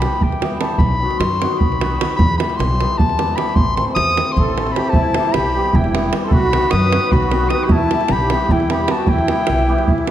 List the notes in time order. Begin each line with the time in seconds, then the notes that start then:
Already playing: B5
0.02 E3 G3 B3 E4 G4, davul high
0.21 E2 G5, davul low
0.32 davul high
0.41 E3 G3 B3 E4 G4, davul high
0.60 E3 G3 B3 E4 G4 A5, davul high
0.65 A5 B5
0.78 B1 B5, davul low
1.01 D#3 F#3 B3 D#4 F#4
1.11 davul high
1.19 F#2 C6, davul high
1.41 D#3 F#3 B3 D#4 F#4, davul high
1.59 B1 B5, davul low
1.72 davul high
1.80 D#3 F#3 B3 D#4 F#4, davul high
1.98 D#3 F#3 B3 D#4 F#4, davul high
2.16 E2 B5, davul low
2.38 E3 G3 B3 E4 G4 B5, davul high
2.50 davul high
2.57 B1 C6, davul high
2.80 E3 G3 B3 E4 G4, davul high
2.98 E2 A5, davul low
3.09 davul high
3.18 E3 G3 B3 E4 G4, davul high
3.35 E3 G3 B3 E4 G4 B5, davul high
3.55 A1 C6, davul low
3.76 E3 A3 C4 E4 A4 C6, davul high
3.95 E2 D#6, davul high
4.17 E3 A3 C4 E4 A4, davul high
4.32 C6
4.37 A1 A4, davul low
4.57 E3 A3 C4 E4 A4, davul high
4.67 davul high
4.72 E3 G4 B5
4.76 A3 C4 E4 A4, davul high
4.84 davul high
4.90 A5, davul low
4.94 E1 E4
5.14 E3 G3 B3, davul high
5.19 E4 G4
5.25 davul high
5.32 B1 G4 B5, davul high
5.55 E3 G3 B3 E4 G4
5.72 E1 E4 G5, davul low
5.84 davul high
5.93 E3 G3 B3 E4 G4, davul high
6.12 E3 G3 B3 E4 G4, davul high
6.24 A4 C6
6.31 B1 F#4 B5, davul low
6.53 D#3 F#3 B3 D#4 F#4, davul high
6.63 davul high
6.71 F#2 B4 D#6, davul high
6.91 D#3 F#3 B3 D#4 F#4, davul high
7.12 B1 F#4 B5, davul low
7.22 davul high
7.31 D#3 F#3 B3 D#4 F#4, davul high
7.49 D#3 F#3 B3 D#4 F#4 B4 D#6, davul high
7.62 G4 B5
7.68 E2 E4 A5, davul low
7.91 E3 G3 B3 E4 G4, davul high
8.01 davul high
8.08 B1 G4 B5, davul high
8.30 E3 G3 B3 E4 G4, davul high
8.49 E2 E4 G5, davul low
8.60 davul high
8.70 E3 G3 B3 E4 G4 B5, davul high
8.88 E3 G3 B3 E4 F#4 G4 A5, davul high
9.07 E2 E4 G5, davul low
9.19 davul high
9.28 E3 G3 B3 E4 G4, davul high
9.47 B1, davul high
9.59 davul high
9.68 E3 G3 B3 E4 G4
9.78 davul high
9.88 E2, davul low
9.98 davul high
10.07 davul high